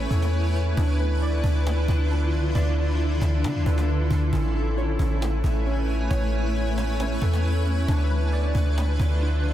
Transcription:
0.00 0.74 A3 medium
0.00 0.54 C#4 medium
0.00 7.84 E4 medium
0.00 2.51 B4 medium
0.00 0.33 C#5 loud
0.00 0.74 C#5 medium
0.00 0.74 G#5 medium
0.00 downlifter medium
0.10 0.75 E2 loud
0.10 0.77 A4 medium
0.10 cajon bass loud
0.22 cajon slap medium
0.33 cajon slap soft
0.55 0.77 C#4 medium
0.55 cajon slap soft
0.77 1.41 D2 loud
0.77 4.29 D3 medium
0.77 4.29 D4 medium
0.77 1.42 D4 loud
0.77 4.29 F4 medium
0.77 cajon bass loud
0.99 2.33 B4 medium
1.22 2.54 D5 loud
1.22 cajon slap soft
1.44 1.87 D2 loud
1.44 2.09 D4 medium
1.44 cajon bass medium
1.67 cajon slap loud
1.88 2.34 D2 loud
1.88 cajon bass loud
2.11 2.77 D4 medium
2.11 cajon slap soft
2.33 2.54 C#2 loud
2.33 cajon slap soft
2.55 3.19 D2 loud
2.55 4.31 A4 medium
2.55 3.88 D5 loud
2.55 cajon bass loud
2.78 3.43 D4 medium
3.00 cajon slap soft
3.21 3.45 D2 loud
3.21 cajon bass loud
3.21 cajon slap loud
3.44 3.57 D3 loud
3.44 4.10 D4 loud
3.44 cajon slap loud
3.51 3.66 D2 loud
3.51 cajon slap soft
3.59 cajon slap soft
3.66 4.09 D2 loud
3.66 4.33 B4 medium
3.66 cajon bass loud
3.78 cajon slap medium
4.11 4.32 D2 loud
4.11 4.33 D4 medium
4.11 cajon bass loud
4.33 4.97 A1 loud
4.33 7.85 A3 medium
4.33 4.98 C#4 loud
4.33 9.54 B4 medium
4.33 7.85 C#5 medium
4.33 7.85 G#5 medium
4.33 cajon bass loud
4.55 5.88 A4 medium
4.77 6.09 C#5 medium
4.77 cajon slap soft
4.99 5.42 A1 loud
4.99 5.65 C#4 medium
4.99 cajon bass medium
5.22 cajon slap loud
5.44 6.08 A1 loud
5.44 cajon bass loud
5.66 6.32 C#4 loud
5.66 cajon slap soft
5.88 cajon slap soft
6.10 7.18 A1 loud
6.10 7.44 C#5 loud
6.10 cajon bass loud
6.33 6.99 C#4 medium
6.55 cajon slap soft
6.78 cajon slap loud
7.00 7.65 C#4 medium
7.00 cajon slap loud
7.21 7.86 E2 loud
7.21 7.88 A4 medium
7.21 cajon bass loud
7.33 cajon slap medium
7.44 cajon slap soft
7.66 7.89 C#4 medium
7.66 cajon slap soft
7.88 8.52 D2 loud
7.88 9.54 D3 medium
7.88 9.54 D4 medium
7.88 8.53 D4 loud
7.88 9.54 E4 medium
7.88 9.54 F4 medium
7.88 cajon bass loud
8.10 9.44 B4 medium
8.33 9.54 D5 loud
8.33 cajon slap soft
8.55 8.98 D2 loud
8.55 9.20 D4 medium
8.55 cajon bass loud
8.78 cajon slap loud
8.99 9.45 D2 loud
8.99 cajon bass loud
9.22 9.54 D4 medium
9.22 cajon slap soft
9.44 9.54 C#2 loud
9.44 cajon slap soft

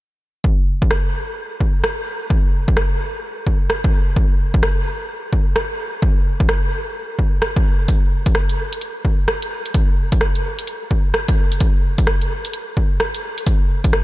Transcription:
0.44 kick loud
0.82 kick medium
0.91 cross-stick loud
1.60 kick medium
1.84 cross-stick loud
2.30 kick loud
2.68 kick loud
2.77 cross-stick loud
3.47 kick medium
3.70 cross-stick loud
3.84 kick medium
4.16 kick loud
4.54 kick loud
4.63 cross-stick loud
5.33 kick medium
5.56 cross-stick loud
6.02 kick loud
6.40 kick loud
6.49 cross-stick loud
7.19 kick medium
7.42 cross-stick loud
7.56 kick medium
7.88 kick loud
7.88 closed hi-hat medium
8.26 kick loud
8.26 closed hi-hat medium
8.35 cross-stick loud
8.49 closed hi-hat soft
8.73 closed hi-hat medium
8.81 closed hi-hat medium
9.05 kick medium
9.28 cross-stick loud
9.42 closed hi-hat soft
9.66 closed hi-hat medium
9.74 kick loud
9.74 closed hi-hat medium
10.12 kick medium
10.12 closed hi-hat medium
10.21 cross-stick loud
10.35 closed hi-hat soft
10.59 closed hi-hat medium
10.67 closed hi-hat medium
10.91 kick medium
11.14 cross-stick loud
11.28 kick medium
11.28 closed hi-hat soft
11.52 closed hi-hat medium
11.60 kick loud
11.60 closed hi-hat medium
11.98 kick medium
11.98 closed hi-hat medium
12.07 cross-stick loud
12.22 closed hi-hat soft
12.45 closed hi-hat medium
12.53 closed hi-hat medium
12.77 kick medium
13.00 cross-stick loud
13.15 closed hi-hat medium
13.38 closed hi-hat medium
13.46 kick loud
13.46 closed hi-hat medium
13.84 kick medium
13.84 closed hi-hat medium
13.93 cross-stick loud

